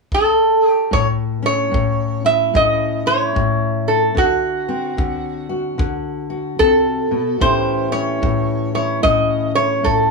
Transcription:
0.12 resonator guitar played with a steel bar A4, kick
0.69 resonator guitar played with a steel bar G4
0.91 steel-string acoustic guitar A2, resonator guitar played with a steel bar C#5, kick
1.42 steel-string acoustic guitar C#4, resonator guitar played with a steel bar C#5
1.71 steel-string acoustic guitar A2, kick
2.25 steel-string acoustic guitar E4, resonator guitar played with a steel bar E5
2.54 steel-string acoustic guitar A2 C#4, resonator guitar played with a steel bar D#5, kick
3.06 steel-string acoustic guitar E4, resonator guitar played with a steel bar C#5
3.35 steel-string acoustic guitar A2, kick
3.88 resonator guitar played with a steel bar A4
4.15 steel-string acoustic guitar D3, resonator guitar played with a steel bar F#4, kick
4.69 steel-string acoustic guitar C4
4.97 steel-string acoustic guitar D3, kick
5.49 steel-string acoustic guitar F#4
5.78 steel-string acoustic guitar D3, kick
6.30 steel-string acoustic guitar F#4
6.59 steel-string acoustic guitar C3, resonator guitar played with a steel bar A4, kick
7.11 steel-string acoustic guitar B2
7.40 steel-string acoustic guitar A2 E3 C#4 E4 G4, resonator guitar played with a steel bar C5, kick
7.92 steel-string acoustic guitar C#4, resonator guitar played with a steel bar C#5
8.22 steel-string acoustic guitar A2, kick
8.74 steel-string acoustic guitar E4, resonator guitar played with a steel bar C#5
9.03 steel-string acoustic guitar A2 C#4, resonator guitar played with a steel bar D#5, kick
9.55 steel-string acoustic guitar E4, resonator guitar played with a steel bar C#5
9.83 steel-string acoustic guitar A2, resonator guitar played with a steel bar A4, kick

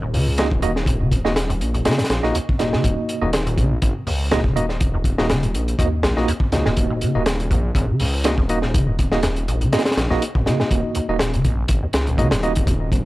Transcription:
0.02 acid bass D#1
0.13 detuned saw bass C#2, acid bass C#3, open hi-hat
0.26 acid bass F#2
0.38 tine electric piano A#3 D#4 F#4 D#5, snare, closed hi-hat
0.51 detuned saw bass D#1, kick
0.62 acid bass D#2, tine electric piano A#3 D#4 F#4 D#5, closed hi-hat
0.76 snare
0.86 acid bass D#1, kick, closed hi-hat
1.00 acid bass C#3
1.11 acid bass F#2, kick, closed hi-hat
1.25 detuned saw bass D#1, tine electric piano A#3 D#4 F#4 D#5, snare
1.36 snare, closed hi-hat
1.49 acid bass D#2, closed hi-hat
1.61 detuned saw bass A#1, closed hi-hat
1.74 acid bass D#1, closed hi-hat
1.85 acid bass C#3, tine electric piano A#3 D#4 F#4 D#5, snare, closed hi-hat
1.91 snare, closed hi-hat
1.98 acid bass F#2, snare, closed hi-hat
2.04 snare, closed hi-hat
2.10 detuned saw bass A#1, snare, closed hi-hat
2.23 detuned saw bass A#1, tine electric piano A#3 D#4 F#4 D#5, snare
2.35 acid bass D#2, closed hi-hat
2.49 kick
2.59 acid bass D#1, tine electric piano A#3 D#4 F#4 D#5, snare, closed hi-hat
2.73 acid bass C#3, snare
2.84 detuned saw bass D#1, acid bass F#2, kick, closed hi-hat
3.09 closed hi-hat
3.22 detuned saw bass D#1, acid bass D#2, tine electric piano A#3 D#4 F#4 D#5
3.33 snare, closed hi-hat
3.46 acid bass D#1, closed hi-hat
3.57 detuned saw bass A#1, acid bass C#3, kick, closed hi-hat
3.71 acid bass F#2
3.82 detuned saw bass G#1, kick, closed hi-hat
4.07 detuned saw bass C#2, acid bass D#2, open hi-hat
4.31 acid bass D#1, tine electric piano A#3 D#4 F#4 D#5, snare, closed hi-hat
4.44 detuned saw bass D#1, acid bass C#3, kick
4.56 acid bass F#2, tine electric piano A#3 D#4 F#4 D#5, closed hi-hat
4.69 snare
4.81 kick, closed hi-hat
4.94 acid bass D#2
5.04 kick, closed hi-hat
5.18 detuned saw bass D#1, acid bass D#1, tine electric piano A#3 D#4 F#4 D#5, snare
5.29 acid bass C#3, snare, closed hi-hat
5.43 acid bass F#2, closed hi-hat
5.54 detuned saw bass A#1, closed hi-hat
5.68 closed hi-hat
5.79 acid bass D#2, tine electric piano A#3 D#4 F#4 D#5, kick, closed hi-hat
6.03 detuned saw bass A#1, acid bass C#2, snare, closed hi-hat
6.17 detuned saw bass A#1, tine electric piano A#3 D#4 F#4 D#5, snare
6.28 acid bass D#2, closed hi-hat
6.40 kick
6.52 detuned saw bass C#2, acid bass D#2, tine electric piano A#3 D#4 F#4 D#5, snare, closed hi-hat
6.66 detuned saw bass D#1, acid bass G#2, snare
6.77 detuned saw bass D#1, kick, closed hi-hat
6.90 acid bass D#1
7.01 acid bass C#3, closed hi-hat
7.15 detuned saw bass D#1, acid bass F#2, tine electric piano A#3 D#4 F#4 D#5
7.26 snare, closed hi-hat
7.40 closed hi-hat
7.51 detuned saw bass A#1, acid bass D#2, kick, closed hi-hat
7.75 acid bass D#1, detuned saw bass G#1, kick, closed hi-hat
7.89 acid bass C#3
8.00 detuned saw bass C#2, acid bass F#2, open hi-hat
8.24 tine electric piano A#3 D#4 F#4 D#5, snare, closed hi-hat
8.38 detuned saw bass D#1, acid bass D#2, kick
8.49 tine electric piano A#3 D#4 F#4 D#5, closed hi-hat
8.62 acid bass D#1, snare
8.74 acid bass C#3, kick, closed hi-hat
8.87 acid bass F#2
8.99 kick, closed hi-hat
9.12 detuned saw bass D#1, tine electric piano A#3 D#4 F#4 D#5, snare
9.23 acid bass D#2, snare, closed hi-hat
9.36 closed hi-hat
9.48 acid bass D#1, detuned saw bass A#1, closed hi-hat
9.61 acid bass C#3, closed hi-hat
9.72 acid bass F#2, tine electric piano A#3 D#4 F#4 D#5, snare, closed hi-hat
9.79 snare, closed hi-hat
9.85 snare, closed hi-hat
9.91 snare, closed hi-hat
9.97 detuned saw bass A#1, snare, closed hi-hat
10.10 detuned saw bass A#1, acid bass D#2, tine electric piano A#3 D#4 F#4 D#5, snare
10.22 closed hi-hat
10.35 acid bass D#1, kick
10.46 acid bass C#3, tine electric piano A#3 D#4 F#4 D#5, snare, closed hi-hat
10.60 acid bass F#2, snare
10.71 detuned saw bass D#1, kick, closed hi-hat
10.95 acid bass D#2, closed hi-hat
11.09 detuned saw bass D#1, tine electric piano A#3 D#4 F#4 D#5
11.19 acid bass D#1, snare, closed hi-hat
11.34 acid bass C#3, closed hi-hat
11.44 detuned saw bass A#1, acid bass F#2, kick, closed hi-hat
11.68 detuned saw bass G#1, kick, closed hi-hat
11.83 acid bass D#2
11.93 detuned saw bass C#2, snare, closed hi-hat
12.07 acid bass D#1, closed hi-hat
12.18 acid bass C#3, tine electric piano A#3 D#4 F#4 D#5, kick, closed hi-hat
12.31 detuned saw bass D#1, acid bass F#2, snare, closed hi-hat
12.43 tine electric piano A#3 D#4 F#4 D#5, closed hi-hat
12.55 kick, closed hi-hat
12.67 acid bass D#2, kick, closed hi-hat
12.92 acid bass D#1, kick, closed hi-hat

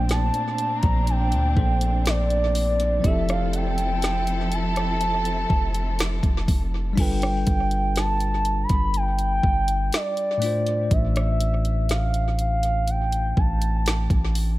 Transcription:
Already playing: 808-style bass A#1, tine electric piano A#2 A3 A#3 D4 C5, string section A#2 C4 D4, soft synth lead G5
0.09 soft synth lead A5, snare, closed hi-hat
0.34 closed hi-hat
0.58 closed hi-hat
0.77 soft synth lead A#5
0.83 808-style bass A#1, kick, closed hi-hat
1.07 soft synth lead G5, closed hi-hat
1.32 808-style bass D2, closed hi-hat
1.54 808-style bass A#1, tine electric piano A#2 A#3 D4 A4, kick
1.58 tine electric piano C5
1.81 closed hi-hat
2.06 soft synth lead D5, snare, closed hi-hat
2.30 closed hi-hat
2.55 closed hi-hat, open hi-hat
2.80 closed hi-hat
3.00 tine electric piano F3 C4
3.04 808-style bass F1, string section F3 C4 E4 A4, tine electric piano E4 G4, soft synth lead E5, kick, closed hi-hat
3.08 tine electric piano A4
3.29 soft synth lead F5, cross-stick, closed hi-hat
3.53 soft synth lead G5, closed hi-hat
3.78 closed hi-hat
4.02 snare, closed hi-hat
4.27 closed hi-hat
4.52 soft synth lead A5, closed hi-hat
4.76 cross-stick, closed hi-hat
5.01 closed hi-hat
5.25 closed hi-hat
5.50 808-style bass F1, kick
5.75 closed hi-hat
5.99 snare, closed hi-hat
6.23 808-style bass F1, kick, closed hi-hat
6.48 808-style bass F1, kick, open hi-hat
6.93 tine electric piano G3 D4
6.97 808-style bass G1, tine electric piano F4 A4, soft synth lead G5, kick, closed hi-hat, crash
7.02 tine electric piano B4
7.22 cross-stick, closed hi-hat
7.47 808-style bass G1, kick, closed hi-hat
7.71 closed hi-hat
7.96 soft synth lead A5, snare, closed hi-hat
8.20 closed hi-hat
8.45 closed hi-hat
8.63 soft synth lead B5
8.69 808-style bass G1, kick, closed hi-hat
8.94 soft synth lead G5, closed hi-hat
9.19 closed hi-hat
9.43 808-style bass G1, kick
9.68 closed hi-hat
9.93 soft synth lead D5, snare, closed hi-hat
10.17 closed hi-hat
10.38 tine electric piano A2 A3
10.42 tine electric piano D4 F4, closed hi-hat, open hi-hat
10.46 tine electric piano C5
10.67 closed hi-hat
10.91 808-style bass A1, soft synth lead E5, kick, closed hi-hat
11.16 cross-stick, closed hi-hat
11.40 closed hi-hat
11.65 closed hi-hat
11.89 soft synth lead F5, snare, closed hi-hat
12.14 closed hi-hat
12.39 soft synth lead F5, closed hi-hat
12.63 closed hi-hat
12.88 soft synth lead G5, closed hi-hat
13.12 closed hi-hat
13.37 808-style bass A1, soft synth lead A5, kick
13.62 closed hi-hat
13.86 snare, closed hi-hat
14.10 808-style bass A1, kick, closed hi-hat
14.35 closed hi-hat, open hi-hat

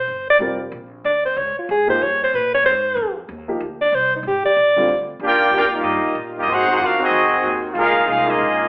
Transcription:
0.00 alto saxophone C5
0.08 upright bass G1
0.30 alto saxophone D5
0.39 upright bass F1, grand piano G3 C4 F4 A#4
0.72 upright bass A#1
1.04 upright bass D2, alto saxophone D5
1.25 alto saxophone C5
1.36 upright bass C#2, alto saxophone C#5
1.57 alto saxophone F4, muted upright bass stroke
1.69 upright bass G#2, alto saxophone G#4
1.87 grand piano F3 A#3 D#4 G4, alto saxophone C5
2.01 upright bass G2, alto saxophone C#5
2.23 alto saxophone C5
2.34 upright bass A#2, alto saxophone B4
2.54 alto saxophone C#5
2.64 upright bass G#2, alto saxophone C5
2.96 upright bass F2
3.29 upright bass D#2
3.48 grand piano F3 A#3 D#4 G4
3.60 upright bass D2
3.81 alto saxophone D5
3.92 upright bass C2, alto saxophone C5
4.16 alto saxophone D#4
4.23 upright bass G#1
4.27 alto saxophone G4
4.45 alto saxophone D5, muted upright bass stroke
4.56 upright bass A#1
4.76 grand piano D3 G3 C4 F4
4.88 upright bass D2
5.19 upright bass D#2, saxophone section D#3 G3 A#3 F4, trombone section A#3 D4 G4
5.25 trumpet section F4 A#4 D5 G5
5.51 upright bass F2, trombone section A#3 D4 G4
5.58 trumpet section F4 A#4 D5 G5
5.74 trombone section G3 A#3 D#4, trumpet section F4
5.78 trumpet section A#3 G4 D#5
5.84 upright bass G2
6.05 muted upright bass stroke
6.15 upright bass A#2
6.38 trombone section G3 A#3 D#4, trumpet section A#3 F4 G4 D#5
6.47 upright bass G#2, saxophone section G#3 C4 F#4, trombone section C4 D#4 F#4, trumpet section G#4
6.51 trumpet section D#4 C5 F#5
6.68 trombone section C4 D#4 F#4, trumpet section D#4 G#4 C5 F#5
6.79 upright bass F#2, trumpet section D4 F#4 A#4 F5, trombone section F4
6.99 trombone section C4 D#4 F#4, trumpet section C4 F#4 G#4 D#5
7.11 upright bass F2
7.43 upright bass D#2
7.74 upright bass C#2, trombone section G#3 A#3 F4, saxophone section A#3 C#4 F4, trumpet section A#4 F5
7.78 trumpet section D#4 G#4
8.06 upright bass C2, trombone section G#3 A#3 F4, trumpet section D#4 G#4 A#4 F5
8.27 trombone section G#3 A#3 D#4, trumpet section A#3 F4 G#4 D#5
8.39 upright bass A#1

